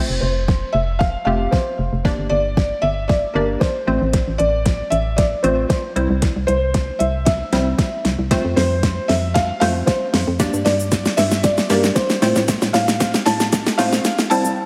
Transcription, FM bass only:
0.10 F1
0.22 F1
0.75 F1
1.27 F1
1.79 F1
1.93 F1
2.19 G1
2.31 G1
2.83 G1
3.35 G1
3.88 A1
4.01 A1
4.28 A1
4.40 A1
4.92 A1
5.44 A1
5.96 C2
6.10 C2
6.36 C2
6.48 C2
7.00 C2
7.53 C2
8.05 C2
8.19 C2
8.45 F2
8.57 F2
9.09 F2
9.61 F2
10.14 F2
10.27 F2
10.53 G2
10.66 G2
11.18 G2
11.70 G2
12.22 A2
12.36 A2
12.62 A2
12.74 A2
13.27 A2
13.79 A2
14.31 C2
14.45 C2

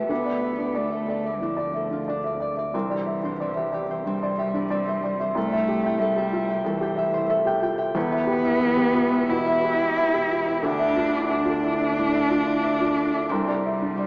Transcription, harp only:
Already playing: E4 G4 B4 E5
0.10 D4
0.26 A4
0.59 D5
0.76 D4
0.93 A4
1.10 A4
1.26 D5
1.43 D4
1.60 D5
1.76 A4
1.93 F4
2.09 D4
2.26 D5
2.42 D5
2.59 D5
2.75 C4
2.91 G4
3.25 C5
3.41 C4
3.57 G4
3.74 G4
3.91 C5
4.07 C4
4.23 C5
4.39 G4
4.55 E4
4.71 C4
4.88 C5
5.05 C5
5.21 C5
5.37 A4
5.54 E5
5.86 G5
6.01 A4
6.18 E5
6.34 E5
6.50 G5
6.66 A4
6.82 G5
6.99 E5
7.14 C5
7.30 A4
7.47 G5
7.63 G5
7.79 G5
7.95 E4
8.12 B4
8.45 E5
8.61 E4
8.78 B4
8.96 B4
9.13 E5
9.30 E4
9.47 E5
9.65 B4
9.82 G4
9.98 E4
10.15 E5
10.30 E5
10.48 E5
10.64 D4
10.82 A4
11.14 D5
11.31 D4
11.48 A4
11.64 A4
11.81 D5
11.97 D4
12.12 D5
12.29 A4
12.45 F4
12.62 D4
12.79 D5
12.95 D5
13.13 D5
13.29 C4
13.47 G4
13.97 C4

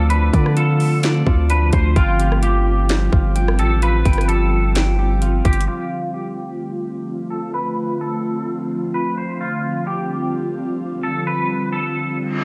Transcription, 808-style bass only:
Already playing: D2
0.33 D3
1.27 D2
1.73 D2
1.96 G1
3.13 G1
3.59 A1
4.05 G1
5.45 G1

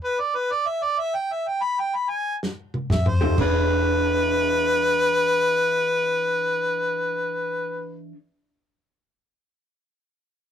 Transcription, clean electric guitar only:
3.21 F3 A3 D#4 G4
3.37 E3 D4 G#4 C#5

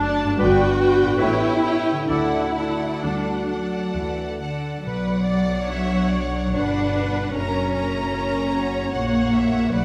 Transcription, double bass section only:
Already playing: F#1
0.41 G1
1.22 A1
2.09 D2
3.04 D2
3.95 D2
4.85 B1
6.55 G1
7.35 F#1
8.93 A#1
9.73 B1

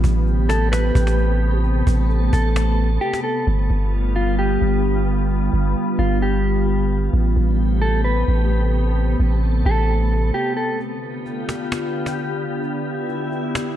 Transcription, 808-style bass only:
0.04 A1
0.95 A1
1.87 A1
2.33 A1
3.47 G1
3.70 G1
4.61 G1
5.53 G1
5.99 G1
7.13 A1
7.36 A1
8.28 A1
9.20 A1
9.65 A1

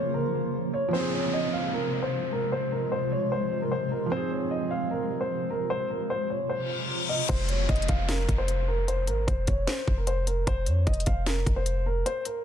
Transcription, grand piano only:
Already playing: C#5
0.14 A#4
0.73 C#5
0.93 C5
1.13 C#5
1.33 D#5
1.53 F5
1.73 A#4
2.03 C5
2.32 A#4
2.52 C5
2.72 A#4
2.92 C5
3.12 C#5
3.32 C5
3.62 A#4
3.72 C5
3.92 A#4
4.12 C5
4.31 C#5
4.51 D#5
4.71 F5
4.91 A#4
5.21 C5
5.50 A#4
5.70 C5
5.90 A#4
6.10 C5
6.30 C#5
6.49 C5
7.09 D#5
7.29 C5
7.49 C#5
7.69 D#5
7.89 F5
8.09 A#4
8.38 C5
8.68 A#4
8.88 C5
9.08 A#4
9.27 C5
9.47 C#5
9.67 C5
9.98 A#4
10.07 C5
10.27 A#4
10.47 C5
10.67 C#5
10.87 D#5
11.06 F5
11.27 A#4
11.56 C5
11.86 A#4
12.06 C5
12.26 A#4

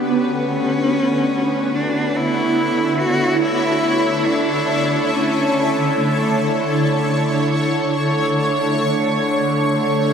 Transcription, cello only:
0.07 C#4
1.75 D4
2.17 E4
2.99 F#4
3.43 E4
4.26 D4
5.13 C#4
5.96 A3

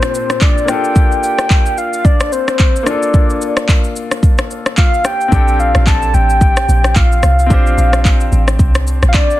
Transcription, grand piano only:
Already playing: A#2 C4 D4 G4 A4
0.65 A#3 D4
0.70 F4 A4
2.83 A#3 D4
2.88 F4 A4
5.28 C4 D4
5.33 G4 A4
7.46 C4 D4
7.51 G4 C5

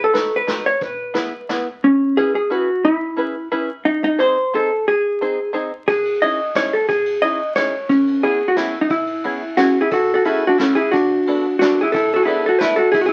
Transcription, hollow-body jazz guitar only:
0.04 A4
0.36 B4
0.66 C#5
0.82 B4
1.84 C#4
2.17 G#4
2.35 G#4
2.51 F#4
2.85 E4
3.85 D#4
4.04 D#4
4.20 C5
4.55 A4
4.88 G#4
5.88 G#4
6.22 D#5
6.56 C#5
6.73 A4
6.89 G#4
7.22 D#5
7.56 C#5
7.89 C#4
8.23 G#4
8.48 F#4
8.56 E4
8.81 D#4
8.91 E4
9.57 C#4 F#4
9.81 E4 G#4
9.92 F#4 A4
10.14 F#4 A4
10.25 E4 G#4
10.47 D4 F#4
10.58 C#4 E4
10.75 E4 G#4
10.91 D4 F#4
11.59 D4 F#4
11.81 E4 G#4
11.92 E4 A4
12.14 F#4 A4
12.23 E4 G#4
12.46 F#4 A4
12.59 E4 B4
12.76 F#4 A4
12.92 E4 G#4
13.01 F#4
13.06 E4 G#4

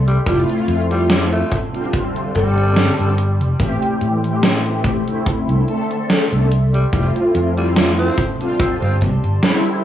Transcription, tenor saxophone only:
0.07 G3
0.26 G3
0.91 G3
1.09 G3
1.32 A3
2.35 G3
6.74 G3
6.93 G3
7.57 G3
7.76 G3
7.99 C4
8.60 C4
8.83 C4

